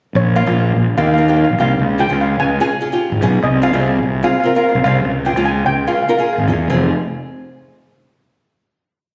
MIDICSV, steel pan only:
0, 0, Header, 1, 2, 480
1, 0, Start_track
1, 0, Key_signature, -4, "minor"
1, 0, Tempo, 408719
1, 187, Time_signature, 4, 2, 24, 8
1, 10738, End_track
2, 0, Start_track
2, 0, Title_t, "Steel pan"
2, 0, Program_c, 0, 114
2, 192, Note_on_c, 0, 73, 66
2, 427, Note_on_c, 0, 77, 89
2, 437, Note_off_c, 0, 73, 0
2, 874, Note_off_c, 0, 77, 0
2, 1146, Note_on_c, 0, 77, 75
2, 1239, Note_off_c, 0, 77, 0
2, 1253, Note_on_c, 0, 77, 53
2, 1321, Note_off_c, 0, 77, 0
2, 1335, Note_on_c, 0, 77, 68
2, 1413, Note_off_c, 0, 77, 0
2, 1427, Note_on_c, 0, 77, 52
2, 1503, Note_off_c, 0, 77, 0
2, 1517, Note_on_c, 0, 77, 58
2, 1588, Note_off_c, 0, 77, 0
2, 1602, Note_on_c, 0, 77, 60
2, 1685, Note_off_c, 0, 77, 0
2, 1697, Note_on_c, 0, 77, 72
2, 1780, Note_off_c, 0, 77, 0
2, 1886, Note_on_c, 0, 77, 76
2, 2354, Note_on_c, 0, 79, 91
2, 2371, Note_off_c, 0, 77, 0
2, 2596, Note_on_c, 0, 77, 74
2, 2597, Note_off_c, 0, 79, 0
2, 2815, Note_on_c, 0, 80, 93
2, 2838, Note_off_c, 0, 77, 0
2, 3044, Note_off_c, 0, 80, 0
2, 3071, Note_on_c, 0, 80, 80
2, 3740, Note_off_c, 0, 80, 0
2, 4033, Note_on_c, 0, 75, 80
2, 4268, Note_on_c, 0, 77, 82
2, 4276, Note_off_c, 0, 75, 0
2, 4712, Note_off_c, 0, 77, 0
2, 4981, Note_on_c, 0, 77, 80
2, 5063, Note_off_c, 0, 77, 0
2, 5077, Note_on_c, 0, 77, 60
2, 5155, Note_off_c, 0, 77, 0
2, 5169, Note_on_c, 0, 77, 63
2, 5239, Note_off_c, 0, 77, 0
2, 5253, Note_on_c, 0, 77, 54
2, 5345, Note_off_c, 0, 77, 0
2, 5359, Note_on_c, 0, 77, 73
2, 5435, Note_off_c, 0, 77, 0
2, 5448, Note_on_c, 0, 77, 61
2, 5493, Note_off_c, 0, 77, 0
2, 5507, Note_on_c, 0, 77, 73
2, 5603, Note_off_c, 0, 77, 0
2, 5686, Note_on_c, 0, 77, 77
2, 6182, Note_on_c, 0, 79, 69
2, 6188, Note_off_c, 0, 77, 0
2, 6406, Note_on_c, 0, 80, 76
2, 6429, Note_off_c, 0, 79, 0
2, 6646, Note_on_c, 0, 79, 82
2, 6661, Note_off_c, 0, 80, 0
2, 6901, Note_off_c, 0, 79, 0
2, 6902, Note_on_c, 0, 77, 62
2, 6972, Note_off_c, 0, 77, 0
2, 6986, Note_on_c, 0, 77, 51
2, 7063, Note_off_c, 0, 77, 0
2, 7077, Note_on_c, 0, 77, 57
2, 7157, Note_off_c, 0, 77, 0
2, 7173, Note_on_c, 0, 77, 50
2, 7236, Note_off_c, 0, 77, 0
2, 7250, Note_on_c, 0, 77, 62
2, 7315, Note_off_c, 0, 77, 0
2, 7329, Note_on_c, 0, 77, 47
2, 7416, Note_off_c, 0, 77, 0
2, 7432, Note_on_c, 0, 77, 53
2, 7515, Note_off_c, 0, 77, 0
2, 10738, End_track
0, 0, End_of_file